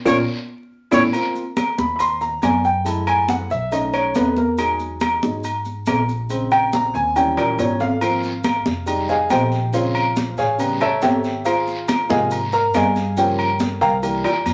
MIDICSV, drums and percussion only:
0, 0, Header, 1, 2, 480
1, 0, Start_track
1, 0, Tempo, 430108
1, 1268, Time_signature, 4, 2, 24, 8
1, 16222, End_track
2, 0, Start_track
2, 0, Title_t, "Drums"
2, 61, Note_on_c, 9, 65, 104
2, 67, Note_on_c, 9, 70, 90
2, 68, Note_on_c, 9, 75, 109
2, 69, Note_on_c, 9, 74, 100
2, 70, Note_on_c, 9, 63, 88
2, 172, Note_off_c, 9, 65, 0
2, 179, Note_off_c, 9, 70, 0
2, 180, Note_off_c, 9, 74, 0
2, 180, Note_off_c, 9, 75, 0
2, 182, Note_off_c, 9, 63, 0
2, 1020, Note_on_c, 9, 65, 98
2, 1027, Note_on_c, 9, 75, 99
2, 1028, Note_on_c, 9, 70, 105
2, 1032, Note_on_c, 9, 63, 109
2, 1032, Note_on_c, 9, 74, 104
2, 1132, Note_off_c, 9, 65, 0
2, 1139, Note_off_c, 9, 70, 0
2, 1139, Note_off_c, 9, 75, 0
2, 1143, Note_off_c, 9, 74, 0
2, 1144, Note_off_c, 9, 63, 0
2, 1262, Note_on_c, 9, 68, 98
2, 1268, Note_on_c, 9, 70, 72
2, 1269, Note_on_c, 9, 63, 33
2, 1269, Note_on_c, 9, 75, 64
2, 1373, Note_off_c, 9, 68, 0
2, 1380, Note_off_c, 9, 70, 0
2, 1380, Note_off_c, 9, 75, 0
2, 1381, Note_off_c, 9, 63, 0
2, 1508, Note_on_c, 9, 63, 34
2, 1511, Note_on_c, 9, 70, 33
2, 1620, Note_off_c, 9, 63, 0
2, 1623, Note_off_c, 9, 70, 0
2, 1749, Note_on_c, 9, 63, 101
2, 1750, Note_on_c, 9, 66, 63
2, 1750, Note_on_c, 9, 68, 100
2, 1750, Note_on_c, 9, 70, 70
2, 1752, Note_on_c, 9, 75, 61
2, 1860, Note_off_c, 9, 63, 0
2, 1862, Note_off_c, 9, 66, 0
2, 1862, Note_off_c, 9, 68, 0
2, 1862, Note_off_c, 9, 70, 0
2, 1864, Note_off_c, 9, 75, 0
2, 1992, Note_on_c, 9, 63, 92
2, 1993, Note_on_c, 9, 70, 29
2, 2104, Note_off_c, 9, 63, 0
2, 2105, Note_off_c, 9, 70, 0
2, 2222, Note_on_c, 9, 68, 82
2, 2227, Note_on_c, 9, 70, 76
2, 2235, Note_on_c, 9, 63, 35
2, 2334, Note_off_c, 9, 68, 0
2, 2339, Note_off_c, 9, 70, 0
2, 2347, Note_off_c, 9, 63, 0
2, 2465, Note_on_c, 9, 63, 33
2, 2467, Note_on_c, 9, 70, 31
2, 2577, Note_off_c, 9, 63, 0
2, 2579, Note_off_c, 9, 70, 0
2, 2707, Note_on_c, 9, 70, 71
2, 2711, Note_on_c, 9, 63, 82
2, 2712, Note_on_c, 9, 66, 83
2, 2712, Note_on_c, 9, 68, 100
2, 2714, Note_on_c, 9, 75, 57
2, 2818, Note_off_c, 9, 70, 0
2, 2823, Note_off_c, 9, 63, 0
2, 2823, Note_off_c, 9, 66, 0
2, 2823, Note_off_c, 9, 68, 0
2, 2826, Note_off_c, 9, 75, 0
2, 2949, Note_on_c, 9, 70, 31
2, 2952, Note_on_c, 9, 63, 35
2, 3060, Note_off_c, 9, 70, 0
2, 3063, Note_off_c, 9, 63, 0
2, 3189, Note_on_c, 9, 68, 68
2, 3189, Note_on_c, 9, 70, 80
2, 3190, Note_on_c, 9, 63, 31
2, 3301, Note_off_c, 9, 63, 0
2, 3301, Note_off_c, 9, 68, 0
2, 3301, Note_off_c, 9, 70, 0
2, 3427, Note_on_c, 9, 68, 105
2, 3427, Note_on_c, 9, 70, 31
2, 3427, Note_on_c, 9, 75, 70
2, 3429, Note_on_c, 9, 63, 31
2, 3539, Note_off_c, 9, 68, 0
2, 3539, Note_off_c, 9, 70, 0
2, 3539, Note_off_c, 9, 75, 0
2, 3541, Note_off_c, 9, 63, 0
2, 3666, Note_on_c, 9, 63, 101
2, 3671, Note_on_c, 9, 70, 71
2, 3675, Note_on_c, 9, 66, 66
2, 3778, Note_off_c, 9, 63, 0
2, 3782, Note_off_c, 9, 70, 0
2, 3787, Note_off_c, 9, 66, 0
2, 3908, Note_on_c, 9, 63, 31
2, 3912, Note_on_c, 9, 70, 27
2, 4020, Note_off_c, 9, 63, 0
2, 4024, Note_off_c, 9, 70, 0
2, 4149, Note_on_c, 9, 63, 38
2, 4152, Note_on_c, 9, 70, 73
2, 4155, Note_on_c, 9, 68, 84
2, 4260, Note_off_c, 9, 63, 0
2, 4263, Note_off_c, 9, 70, 0
2, 4266, Note_off_c, 9, 68, 0
2, 4388, Note_on_c, 9, 70, 31
2, 4392, Note_on_c, 9, 68, 107
2, 4397, Note_on_c, 9, 63, 35
2, 4399, Note_on_c, 9, 75, 75
2, 4499, Note_off_c, 9, 70, 0
2, 4504, Note_off_c, 9, 68, 0
2, 4509, Note_off_c, 9, 63, 0
2, 4510, Note_off_c, 9, 75, 0
2, 4628, Note_on_c, 9, 70, 68
2, 4636, Note_on_c, 9, 63, 76
2, 4638, Note_on_c, 9, 66, 85
2, 4638, Note_on_c, 9, 68, 84
2, 4740, Note_off_c, 9, 70, 0
2, 4747, Note_off_c, 9, 63, 0
2, 4749, Note_off_c, 9, 66, 0
2, 4749, Note_off_c, 9, 68, 0
2, 4872, Note_on_c, 9, 63, 74
2, 4872, Note_on_c, 9, 70, 29
2, 4983, Note_off_c, 9, 63, 0
2, 4984, Note_off_c, 9, 70, 0
2, 5110, Note_on_c, 9, 70, 75
2, 5116, Note_on_c, 9, 63, 36
2, 5117, Note_on_c, 9, 68, 112
2, 5122, Note_on_c, 9, 75, 70
2, 5221, Note_off_c, 9, 70, 0
2, 5227, Note_off_c, 9, 63, 0
2, 5229, Note_off_c, 9, 68, 0
2, 5234, Note_off_c, 9, 75, 0
2, 5350, Note_on_c, 9, 70, 31
2, 5359, Note_on_c, 9, 63, 35
2, 5462, Note_off_c, 9, 70, 0
2, 5471, Note_off_c, 9, 63, 0
2, 5585, Note_on_c, 9, 70, 65
2, 5593, Note_on_c, 9, 63, 95
2, 5596, Note_on_c, 9, 66, 57
2, 5596, Note_on_c, 9, 68, 107
2, 5597, Note_on_c, 9, 75, 63
2, 5697, Note_off_c, 9, 70, 0
2, 5705, Note_off_c, 9, 63, 0
2, 5707, Note_off_c, 9, 66, 0
2, 5707, Note_off_c, 9, 68, 0
2, 5709, Note_off_c, 9, 75, 0
2, 5832, Note_on_c, 9, 70, 27
2, 5836, Note_on_c, 9, 63, 96
2, 5944, Note_off_c, 9, 70, 0
2, 5947, Note_off_c, 9, 63, 0
2, 6068, Note_on_c, 9, 70, 80
2, 6077, Note_on_c, 9, 63, 37
2, 6080, Note_on_c, 9, 68, 83
2, 6179, Note_off_c, 9, 70, 0
2, 6188, Note_off_c, 9, 63, 0
2, 6192, Note_off_c, 9, 68, 0
2, 6307, Note_on_c, 9, 70, 29
2, 6318, Note_on_c, 9, 63, 36
2, 6418, Note_off_c, 9, 70, 0
2, 6430, Note_off_c, 9, 63, 0
2, 6542, Note_on_c, 9, 70, 76
2, 6554, Note_on_c, 9, 63, 71
2, 6556, Note_on_c, 9, 66, 88
2, 6556, Note_on_c, 9, 68, 101
2, 6558, Note_on_c, 9, 75, 62
2, 6654, Note_off_c, 9, 70, 0
2, 6666, Note_off_c, 9, 63, 0
2, 6667, Note_off_c, 9, 66, 0
2, 6667, Note_off_c, 9, 68, 0
2, 6670, Note_off_c, 9, 75, 0
2, 6792, Note_on_c, 9, 70, 34
2, 6795, Note_on_c, 9, 63, 38
2, 6903, Note_off_c, 9, 70, 0
2, 6906, Note_off_c, 9, 63, 0
2, 7027, Note_on_c, 9, 70, 76
2, 7035, Note_on_c, 9, 63, 33
2, 7035, Note_on_c, 9, 68, 68
2, 7139, Note_off_c, 9, 70, 0
2, 7146, Note_off_c, 9, 63, 0
2, 7147, Note_off_c, 9, 68, 0
2, 7267, Note_on_c, 9, 70, 32
2, 7274, Note_on_c, 9, 68, 110
2, 7274, Note_on_c, 9, 75, 69
2, 7275, Note_on_c, 9, 63, 34
2, 7379, Note_off_c, 9, 70, 0
2, 7385, Note_off_c, 9, 75, 0
2, 7386, Note_off_c, 9, 63, 0
2, 7386, Note_off_c, 9, 68, 0
2, 7508, Note_on_c, 9, 70, 69
2, 7512, Note_on_c, 9, 66, 60
2, 7514, Note_on_c, 9, 63, 94
2, 7619, Note_off_c, 9, 70, 0
2, 7623, Note_off_c, 9, 66, 0
2, 7625, Note_off_c, 9, 63, 0
2, 7755, Note_on_c, 9, 70, 27
2, 7759, Note_on_c, 9, 63, 35
2, 7867, Note_off_c, 9, 70, 0
2, 7871, Note_off_c, 9, 63, 0
2, 7990, Note_on_c, 9, 68, 87
2, 7993, Note_on_c, 9, 70, 77
2, 7996, Note_on_c, 9, 63, 37
2, 8102, Note_off_c, 9, 68, 0
2, 8104, Note_off_c, 9, 70, 0
2, 8108, Note_off_c, 9, 63, 0
2, 8228, Note_on_c, 9, 65, 104
2, 8228, Note_on_c, 9, 68, 118
2, 8234, Note_on_c, 9, 70, 31
2, 8235, Note_on_c, 9, 75, 73
2, 8237, Note_on_c, 9, 63, 35
2, 8340, Note_off_c, 9, 65, 0
2, 8340, Note_off_c, 9, 68, 0
2, 8346, Note_off_c, 9, 70, 0
2, 8346, Note_off_c, 9, 75, 0
2, 8349, Note_off_c, 9, 63, 0
2, 8467, Note_on_c, 9, 65, 85
2, 8467, Note_on_c, 9, 68, 86
2, 8471, Note_on_c, 9, 70, 76
2, 8474, Note_on_c, 9, 63, 74
2, 8578, Note_off_c, 9, 65, 0
2, 8578, Note_off_c, 9, 68, 0
2, 8583, Note_off_c, 9, 70, 0
2, 8585, Note_off_c, 9, 63, 0
2, 8706, Note_on_c, 9, 70, 30
2, 8707, Note_on_c, 9, 66, 77
2, 8817, Note_off_c, 9, 70, 0
2, 8819, Note_off_c, 9, 66, 0
2, 8943, Note_on_c, 9, 68, 109
2, 8945, Note_on_c, 9, 70, 75
2, 8946, Note_on_c, 9, 63, 33
2, 8950, Note_on_c, 9, 74, 75
2, 8955, Note_on_c, 9, 75, 64
2, 9054, Note_off_c, 9, 68, 0
2, 9057, Note_off_c, 9, 63, 0
2, 9057, Note_off_c, 9, 70, 0
2, 9062, Note_off_c, 9, 74, 0
2, 9066, Note_off_c, 9, 75, 0
2, 9185, Note_on_c, 9, 70, 34
2, 9186, Note_on_c, 9, 63, 33
2, 9297, Note_off_c, 9, 63, 0
2, 9297, Note_off_c, 9, 70, 0
2, 9417, Note_on_c, 9, 70, 66
2, 9423, Note_on_c, 9, 63, 95
2, 9425, Note_on_c, 9, 66, 63
2, 9425, Note_on_c, 9, 68, 103
2, 9430, Note_on_c, 9, 73, 74
2, 9430, Note_on_c, 9, 75, 59
2, 9529, Note_off_c, 9, 70, 0
2, 9535, Note_off_c, 9, 63, 0
2, 9537, Note_off_c, 9, 66, 0
2, 9537, Note_off_c, 9, 68, 0
2, 9542, Note_off_c, 9, 73, 0
2, 9542, Note_off_c, 9, 75, 0
2, 9661, Note_on_c, 9, 73, 65
2, 9662, Note_on_c, 9, 63, 92
2, 9663, Note_on_c, 9, 70, 29
2, 9772, Note_off_c, 9, 73, 0
2, 9773, Note_off_c, 9, 63, 0
2, 9775, Note_off_c, 9, 70, 0
2, 9897, Note_on_c, 9, 63, 35
2, 9897, Note_on_c, 9, 70, 70
2, 9901, Note_on_c, 9, 74, 72
2, 9905, Note_on_c, 9, 68, 92
2, 10009, Note_off_c, 9, 63, 0
2, 10009, Note_off_c, 9, 70, 0
2, 10013, Note_off_c, 9, 74, 0
2, 10017, Note_off_c, 9, 68, 0
2, 10143, Note_on_c, 9, 63, 38
2, 10144, Note_on_c, 9, 70, 31
2, 10254, Note_off_c, 9, 63, 0
2, 10255, Note_off_c, 9, 70, 0
2, 10379, Note_on_c, 9, 70, 76
2, 10381, Note_on_c, 9, 63, 75
2, 10382, Note_on_c, 9, 66, 79
2, 10382, Note_on_c, 9, 68, 110
2, 10383, Note_on_c, 9, 73, 77
2, 10385, Note_on_c, 9, 75, 66
2, 10490, Note_off_c, 9, 70, 0
2, 10493, Note_off_c, 9, 63, 0
2, 10494, Note_off_c, 9, 66, 0
2, 10494, Note_off_c, 9, 68, 0
2, 10494, Note_off_c, 9, 73, 0
2, 10497, Note_off_c, 9, 75, 0
2, 10620, Note_on_c, 9, 70, 31
2, 10622, Note_on_c, 9, 73, 75
2, 10626, Note_on_c, 9, 63, 36
2, 10732, Note_off_c, 9, 70, 0
2, 10733, Note_off_c, 9, 73, 0
2, 10738, Note_off_c, 9, 63, 0
2, 10856, Note_on_c, 9, 74, 82
2, 10860, Note_on_c, 9, 70, 76
2, 10864, Note_on_c, 9, 63, 34
2, 10865, Note_on_c, 9, 68, 72
2, 10967, Note_off_c, 9, 74, 0
2, 10972, Note_off_c, 9, 70, 0
2, 10976, Note_off_c, 9, 63, 0
2, 10977, Note_off_c, 9, 68, 0
2, 11101, Note_on_c, 9, 68, 111
2, 11105, Note_on_c, 9, 70, 34
2, 11107, Note_on_c, 9, 63, 37
2, 11107, Note_on_c, 9, 75, 70
2, 11213, Note_off_c, 9, 68, 0
2, 11216, Note_off_c, 9, 70, 0
2, 11218, Note_off_c, 9, 63, 0
2, 11218, Note_off_c, 9, 75, 0
2, 11339, Note_on_c, 9, 70, 72
2, 11344, Note_on_c, 9, 66, 59
2, 11345, Note_on_c, 9, 73, 69
2, 11349, Note_on_c, 9, 63, 91
2, 11450, Note_off_c, 9, 70, 0
2, 11456, Note_off_c, 9, 66, 0
2, 11457, Note_off_c, 9, 73, 0
2, 11460, Note_off_c, 9, 63, 0
2, 11580, Note_on_c, 9, 70, 28
2, 11591, Note_on_c, 9, 63, 34
2, 11591, Note_on_c, 9, 73, 66
2, 11691, Note_off_c, 9, 70, 0
2, 11702, Note_off_c, 9, 63, 0
2, 11703, Note_off_c, 9, 73, 0
2, 11821, Note_on_c, 9, 70, 75
2, 11827, Note_on_c, 9, 74, 83
2, 11829, Note_on_c, 9, 68, 88
2, 11830, Note_on_c, 9, 63, 37
2, 11932, Note_off_c, 9, 70, 0
2, 11939, Note_off_c, 9, 74, 0
2, 11940, Note_off_c, 9, 68, 0
2, 11942, Note_off_c, 9, 63, 0
2, 12058, Note_on_c, 9, 70, 32
2, 12064, Note_on_c, 9, 68, 116
2, 12070, Note_on_c, 9, 75, 69
2, 12073, Note_on_c, 9, 63, 36
2, 12169, Note_off_c, 9, 70, 0
2, 12175, Note_off_c, 9, 68, 0
2, 12182, Note_off_c, 9, 75, 0
2, 12184, Note_off_c, 9, 63, 0
2, 12296, Note_on_c, 9, 70, 77
2, 12305, Note_on_c, 9, 66, 91
2, 12305, Note_on_c, 9, 68, 87
2, 12314, Note_on_c, 9, 63, 84
2, 12314, Note_on_c, 9, 73, 77
2, 12408, Note_off_c, 9, 70, 0
2, 12416, Note_off_c, 9, 66, 0
2, 12416, Note_off_c, 9, 68, 0
2, 12426, Note_off_c, 9, 63, 0
2, 12426, Note_off_c, 9, 73, 0
2, 12539, Note_on_c, 9, 70, 31
2, 12551, Note_on_c, 9, 73, 74
2, 12651, Note_off_c, 9, 70, 0
2, 12662, Note_off_c, 9, 73, 0
2, 12781, Note_on_c, 9, 70, 78
2, 12786, Note_on_c, 9, 74, 78
2, 12790, Note_on_c, 9, 68, 107
2, 12792, Note_on_c, 9, 75, 64
2, 12797, Note_on_c, 9, 63, 34
2, 12892, Note_off_c, 9, 70, 0
2, 12897, Note_off_c, 9, 74, 0
2, 12901, Note_off_c, 9, 68, 0
2, 12903, Note_off_c, 9, 75, 0
2, 12909, Note_off_c, 9, 63, 0
2, 13026, Note_on_c, 9, 70, 34
2, 13031, Note_on_c, 9, 63, 35
2, 13137, Note_off_c, 9, 70, 0
2, 13142, Note_off_c, 9, 63, 0
2, 13260, Note_on_c, 9, 70, 72
2, 13262, Note_on_c, 9, 66, 64
2, 13262, Note_on_c, 9, 68, 101
2, 13265, Note_on_c, 9, 75, 69
2, 13269, Note_on_c, 9, 63, 99
2, 13270, Note_on_c, 9, 73, 76
2, 13371, Note_off_c, 9, 70, 0
2, 13373, Note_off_c, 9, 66, 0
2, 13373, Note_off_c, 9, 68, 0
2, 13377, Note_off_c, 9, 75, 0
2, 13380, Note_off_c, 9, 63, 0
2, 13382, Note_off_c, 9, 73, 0
2, 13497, Note_on_c, 9, 70, 28
2, 13508, Note_on_c, 9, 63, 101
2, 13510, Note_on_c, 9, 73, 76
2, 13608, Note_off_c, 9, 70, 0
2, 13619, Note_off_c, 9, 63, 0
2, 13622, Note_off_c, 9, 73, 0
2, 13735, Note_on_c, 9, 70, 77
2, 13745, Note_on_c, 9, 74, 81
2, 13749, Note_on_c, 9, 68, 89
2, 13751, Note_on_c, 9, 63, 40
2, 13846, Note_off_c, 9, 70, 0
2, 13857, Note_off_c, 9, 74, 0
2, 13860, Note_off_c, 9, 68, 0
2, 13863, Note_off_c, 9, 63, 0
2, 13975, Note_on_c, 9, 70, 31
2, 13984, Note_on_c, 9, 63, 41
2, 14087, Note_off_c, 9, 70, 0
2, 14095, Note_off_c, 9, 63, 0
2, 14219, Note_on_c, 9, 70, 75
2, 14223, Note_on_c, 9, 66, 86
2, 14223, Note_on_c, 9, 68, 110
2, 14225, Note_on_c, 9, 63, 80
2, 14226, Note_on_c, 9, 75, 69
2, 14227, Note_on_c, 9, 73, 72
2, 14331, Note_off_c, 9, 70, 0
2, 14335, Note_off_c, 9, 66, 0
2, 14335, Note_off_c, 9, 68, 0
2, 14336, Note_off_c, 9, 63, 0
2, 14337, Note_off_c, 9, 75, 0
2, 14339, Note_off_c, 9, 73, 0
2, 14460, Note_on_c, 9, 70, 34
2, 14463, Note_on_c, 9, 63, 42
2, 14467, Note_on_c, 9, 73, 76
2, 14571, Note_off_c, 9, 70, 0
2, 14574, Note_off_c, 9, 63, 0
2, 14579, Note_off_c, 9, 73, 0
2, 14697, Note_on_c, 9, 70, 76
2, 14702, Note_on_c, 9, 68, 69
2, 14704, Note_on_c, 9, 74, 76
2, 14705, Note_on_c, 9, 63, 36
2, 14809, Note_off_c, 9, 70, 0
2, 14814, Note_off_c, 9, 68, 0
2, 14816, Note_off_c, 9, 63, 0
2, 14816, Note_off_c, 9, 74, 0
2, 14936, Note_on_c, 9, 63, 35
2, 14939, Note_on_c, 9, 68, 115
2, 14942, Note_on_c, 9, 70, 33
2, 14947, Note_on_c, 9, 75, 75
2, 15048, Note_off_c, 9, 63, 0
2, 15051, Note_off_c, 9, 68, 0
2, 15054, Note_off_c, 9, 70, 0
2, 15059, Note_off_c, 9, 75, 0
2, 15172, Note_on_c, 9, 70, 71
2, 15179, Note_on_c, 9, 63, 94
2, 15181, Note_on_c, 9, 66, 66
2, 15183, Note_on_c, 9, 73, 74
2, 15284, Note_off_c, 9, 70, 0
2, 15291, Note_off_c, 9, 63, 0
2, 15292, Note_off_c, 9, 66, 0
2, 15295, Note_off_c, 9, 73, 0
2, 15414, Note_on_c, 9, 73, 63
2, 15417, Note_on_c, 9, 70, 29
2, 15425, Note_on_c, 9, 63, 35
2, 15526, Note_off_c, 9, 73, 0
2, 15528, Note_off_c, 9, 70, 0
2, 15537, Note_off_c, 9, 63, 0
2, 15657, Note_on_c, 9, 70, 76
2, 15659, Note_on_c, 9, 68, 90
2, 15659, Note_on_c, 9, 74, 85
2, 15660, Note_on_c, 9, 63, 42
2, 15769, Note_off_c, 9, 70, 0
2, 15770, Note_off_c, 9, 68, 0
2, 15771, Note_off_c, 9, 74, 0
2, 15772, Note_off_c, 9, 63, 0
2, 15896, Note_on_c, 9, 65, 104
2, 15896, Note_on_c, 9, 68, 119
2, 15901, Note_on_c, 9, 63, 38
2, 15904, Note_on_c, 9, 75, 74
2, 15905, Note_on_c, 9, 70, 33
2, 16007, Note_off_c, 9, 65, 0
2, 16007, Note_off_c, 9, 68, 0
2, 16013, Note_off_c, 9, 63, 0
2, 16016, Note_off_c, 9, 70, 0
2, 16016, Note_off_c, 9, 75, 0
2, 16135, Note_on_c, 9, 68, 92
2, 16139, Note_on_c, 9, 63, 73
2, 16139, Note_on_c, 9, 70, 76
2, 16143, Note_on_c, 9, 73, 75
2, 16222, Note_off_c, 9, 63, 0
2, 16222, Note_off_c, 9, 68, 0
2, 16222, Note_off_c, 9, 70, 0
2, 16222, Note_off_c, 9, 73, 0
2, 16222, End_track
0, 0, End_of_file